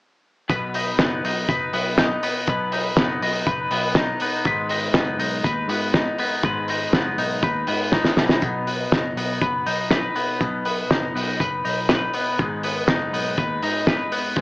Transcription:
0.50 0.92 B1 loud
0.50 2.47 B2 medium
0.50 1.48 B4 medium
0.50 kick loud
0.50 closed hi-hat medium
0.74 1.24 D#4 medium
0.74 open hi-hat medium
0.99 1.20 F#1 medium
0.99 1.73 B3 medium
0.99 kick medium
0.99 snare loud
0.99 closed hi-hat medium
1.24 1.45 B1 loud
1.24 1.98 D#4 soft
1.24 open hi-hat medium
1.48 1.69 F#1 medium
1.48 2.49 B4 medium
1.48 kick loud
1.48 closed hi-hat medium
1.73 2.15 B1 medium
1.73 2.23 B3 medium
1.73 open hi-hat medium
1.98 2.73 D#4 medium
1.98 kick loud
1.98 snare medium
1.98 closed hi-hat medium
2.23 2.97 B3 medium
2.23 open hi-hat medium
2.47 2.90 B1 loud
2.47 4.46 B2 medium
2.47 3.46 B4 medium
2.47 kick loud
2.47 closed hi-hat medium
2.72 3.22 D#4 medium
2.72 open hi-hat medium
2.97 3.18 F#1 medium
2.97 3.72 B3 medium
2.97 kick loud
2.97 snare loud
2.97 closed hi-hat medium
3.21 3.43 B1 medium
3.21 3.96 D#4 soft
3.21 open hi-hat medium
3.47 3.68 F#1 medium
3.47 4.46 B4 medium
3.47 kick loud
3.47 closed hi-hat medium
3.71 4.14 B1 medium
3.71 4.21 B3 medium
3.71 open hi-hat medium
3.95 4.70 D#4 medium
3.95 kick loud
3.95 snare medium
3.95 closed hi-hat medium
4.20 4.95 B3 medium
4.20 open hi-hat medium
4.45 4.88 G#1 loud
4.45 6.43 G#2 medium
4.45 5.44 B4 medium
4.45 kick loud
4.45 closed hi-hat medium
4.69 5.19 D#4 medium
4.69 open hi-hat medium
4.94 5.16 F#1 medium
4.94 5.69 B3 medium
4.94 kick medium
4.94 snare medium
4.94 closed hi-hat medium
5.19 5.40 B1 medium
5.19 5.94 D#4 soft
5.19 open hi-hat medium
5.44 5.66 D#2 medium
5.44 6.44 B4 medium
5.44 kick loud
5.44 closed hi-hat medium
5.68 6.11 G#2 medium
5.68 6.19 B3 medium
5.68 open hi-hat medium
5.94 6.69 D#4 medium
5.94 kick loud
5.94 snare loud
5.94 closed hi-hat medium
6.18 6.94 B3 medium
6.18 open hi-hat medium
6.43 6.86 G#1 loud
6.43 8.17 G#2 medium
6.43 7.43 B4 medium
6.43 kick loud
6.43 closed hi-hat medium
6.68 7.18 D#4 medium
6.68 open hi-hat medium
6.93 7.15 F#1 medium
6.93 7.68 B3 medium
6.93 kick medium
6.93 snare medium
6.93 closed hi-hat medium
7.18 7.39 B1 medium
7.18 7.93 D#4 medium
7.18 open hi-hat medium
7.42 7.64 D#2 medium
7.42 9.41 B4 medium
7.42 kick loud
7.42 closed hi-hat medium
7.67 8.10 G#2 medium
7.67 8.67 B3 medium
7.67 open hi-hat medium
7.92 8.92 D#4 medium
7.92 kick loud
7.92 snare medium
8.05 snare medium
8.17 8.38 B1 medium
8.17 8.42 B2 medium
8.17 snare medium
8.29 snare medium
8.42 8.84 B1 medium
8.42 10.40 B2 medium
8.42 kick medium
8.42 closed hi-hat medium
8.67 9.17 B3 medium
8.67 open hi-hat medium
8.92 9.13 F#1 medium
8.92 9.66 D#4 medium
8.92 kick loud
8.92 snare loud
8.92 closed hi-hat medium
9.16 9.37 B1 medium
9.16 10.15 B3 soft
9.16 open hi-hat medium
9.42 9.63 F#1 medium
9.42 9.91 B4 medium
9.42 kick loud
9.42 closed hi-hat medium
9.66 10.09 B1 medium
9.66 10.90 D#4 medium
9.66 open hi-hat medium
9.91 11.40 B4 medium
9.91 kick loud
9.91 snare medium
9.91 closed hi-hat medium
10.16 10.65 B3 medium
10.16 open hi-hat medium
10.41 10.83 B1 medium
10.41 12.39 B2 medium
10.41 kick loud
10.41 closed hi-hat medium
10.65 11.15 B3 medium
10.65 open hi-hat medium
10.90 11.11 F#1 medium
10.90 11.64 D#4 medium
10.90 kick medium
10.90 snare loud
10.90 closed hi-hat medium
11.15 11.36 B1 medium
11.15 12.14 B3 soft
11.15 open hi-hat medium
11.40 11.61 F#1 medium
11.40 11.89 B4 medium
11.40 kick loud
11.40 closed hi-hat medium
11.65 12.07 B1 medium
11.65 12.88 D#4 medium
11.65 open hi-hat medium
11.89 13.38 B4 medium
11.89 kick loud
11.89 snare medium
11.89 closed hi-hat medium
12.13 12.64 B3 medium
12.13 open hi-hat medium
12.39 12.81 G#1 medium
12.39 14.36 G#2 medium
12.39 kick loud
12.39 closed hi-hat medium
12.63 13.12 B3 medium
12.63 open hi-hat medium
12.88 13.10 F#1 medium
12.88 13.62 D#4 medium
12.88 kick loud
12.88 snare loud
12.88 closed hi-hat medium
13.12 13.34 B1 medium
13.12 14.11 B3 soft
13.12 open hi-hat medium
13.37 13.59 D#2 medium
13.37 13.86 B4 medium
13.37 kick loud
13.37 closed hi-hat medium
13.62 14.05 G#2 medium
13.62 14.41 D#4 medium
13.62 open hi-hat medium
13.87 14.41 B4 medium
13.87 kick loud
13.87 snare loud
13.87 closed hi-hat medium
14.12 14.41 B3 medium
14.12 open hi-hat medium
14.36 14.41 G#1 loud
14.36 14.41 G#2 medium
14.36 kick loud
14.36 closed hi-hat medium

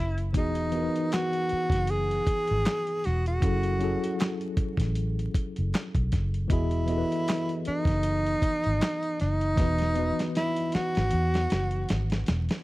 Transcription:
0.00 0.35 F#1 medium
0.00 0.32 E4 medium
0.18 closed hi-hat soft
0.33 0.87 E1 medium
0.33 0.69 E3 medium
0.33 0.70 B3 medium
0.33 0.70 D#4 medium
0.33 0.71 F#4 medium
0.33 kick loud
0.33 closed hi-hat medium
0.38 1.09 D#4 medium
0.38 0.71 G#4 medium
0.55 closed hi-hat soft
0.71 2.13 E3 medium
0.71 2.14 B3 medium
0.71 2.14 D#4 medium
0.71 2.15 F#4 medium
0.71 closed hi-hat medium
0.76 0.82 A#4 medium
0.83 2.19 B4 medium
0.96 closed hi-hat soft
1.12 1.92 F#4 medium
1.12 snare medium
1.12 clap medium
1.12 closed hi-hat medium
1.33 closed hi-hat soft
1.49 muted fingered electric bass stroke soft
1.49 closed hi-hat medium
1.70 2.19 F#1 medium
1.70 kick medium
1.70 closed hi-hat soft
1.74 snare soft
1.87 3.07 G#4 loud
1.87 closed hi-hat medium
2.11 closed hi-hat soft
2.27 muted fingered electric bass stroke soft
2.27 kick medium
2.27 closed hi-hat medium
2.48 2.64 G#1 medium
2.48 closed hi-hat soft
2.65 snare medium
2.65 clap medium
2.65 closed hi-hat medium
2.87 closed hi-hat soft
3.04 3.39 E1 medium
3.04 3.27 F#4 medium
3.04 snare soft
3.04 closed hi-hat medium
3.26 4.38 F#4 medium
3.26 closed hi-hat soft
3.40 3.95 F#1 loud
3.40 3.77 F#3 medium
3.40 3.77 C#4 medium
3.40 3.78 E4 medium
3.40 3.78 G#4 medium
3.40 kick loud
3.40 closed hi-hat medium
3.45 3.79 A4 medium
3.63 closed hi-hat medium
3.79 5.21 F#3 medium
3.79 5.21 C#4 medium
3.79 5.22 E4 medium
3.79 5.23 G#4 medium
3.79 closed hi-hat medium
3.84 5.23 A4 medium
4.04 closed hi-hat soft
4.20 snare medium
4.20 clap medium
4.20 closed hi-hat medium
4.41 closed hi-hat soft
4.57 muted fingered electric bass stroke soft
4.57 kick medium
4.57 closed hi-hat medium
4.77 5.27 A1 medium
4.77 kick medium
4.77 closed hi-hat soft
4.82 snare soft
4.95 closed hi-hat medium
5.19 closed hi-hat soft
5.34 muted fingered electric bass stroke soft
5.34 kick medium
5.34 closed hi-hat medium
5.56 5.72 F#1 medium
5.56 closed hi-hat soft
5.74 snare medium
5.74 clap medium
5.74 closed hi-hat medium
5.95 6.10 B1 medium
5.95 kick medium
5.95 closed hi-hat soft
6.12 6.46 F#1 medium
6.12 kick medium
6.12 snare soft
6.12 closed hi-hat medium
6.34 closed hi-hat soft
6.48 7.03 E1 loud
6.48 6.84 E3 medium
6.48 6.85 B3 medium
6.48 7.62 E4 medium
6.48 6.86 F#4 medium
6.48 6.85 D#5 medium
6.48 kick loud
6.48 closed hi-hat medium
6.53 6.87 G#4 medium
6.71 closed hi-hat soft
6.86 8.28 E3 medium
6.86 8.29 B3 medium
6.86 8.30 F#4 medium
6.86 8.30 D#5 medium
6.86 closed hi-hat medium
6.91 6.97 A4 medium
6.98 8.34 B4 medium
7.12 closed hi-hat soft
7.28 snare medium
7.28 clap medium
7.28 closed hi-hat medium
7.49 closed hi-hat soft
7.65 9.16 D#4 medium
7.65 muted fingered electric bass stroke soft
7.65 closed hi-hat soft
7.85 8.35 F#1 medium
7.85 kick medium
7.85 snare soft
7.85 closed hi-hat soft
8.03 closed hi-hat medium
8.27 closed hi-hat soft
8.42 muted fingered electric bass stroke soft
8.42 kick medium
8.42 closed hi-hat medium
8.64 8.80 G#1 medium
8.64 closed hi-hat soft
8.81 snare medium
8.81 clap medium
8.81 closed hi-hat medium
9.03 closed hi-hat soft
9.20 9.54 F#1 medium
9.20 10.31 D#4 loud
9.20 snare soft
9.20 closed hi-hat medium
9.41 closed hi-hat soft
9.55 10.11 E1 loud
9.55 9.92 E3 medium
9.55 9.92 B3 medium
9.55 9.93 D#4 medium
9.55 9.94 F#4 medium
9.55 kick loud
9.55 closed hi-hat medium
9.60 9.94 B4 medium
9.60 snare medium
9.78 snare soft
9.78 closed hi-hat soft
9.94 11.36 E3 medium
9.94 11.37 B3 medium
9.94 11.38 F#4 medium
9.94 11.37 D#5 medium
9.94 closed hi-hat medium
9.99 11.39 B4 medium
10.19 snare medium
10.19 closed hi-hat soft
10.35 10.76 E4 medium
10.35 snare medium
10.35 closed hi-hat medium
10.56 closed hi-hat soft
10.72 12.28 F#4 loud
10.72 muted fingered electric bass stroke soft
10.72 snare medium
10.72 closed hi-hat medium
10.95 11.11 G#1 medium
10.95 snare medium
10.95 closed hi-hat soft
11.11 11.46 E2 loud
11.11 closed hi-hat medium
11.34 snare medium
11.34 closed hi-hat soft
11.50 11.84 F#1 medium
11.50 snare medium
11.50 closed hi-hat medium
11.71 closed hi-hat soft
11.89 12.23 G#1 medium
11.89 snare medium
11.89 closed hi-hat medium
12.10 snare medium
12.10 closed hi-hat soft
12.26 12.47 E1 medium
12.26 snare medium
12.26 closed hi-hat medium
12.49 snare medium
12.49 closed hi-hat soft

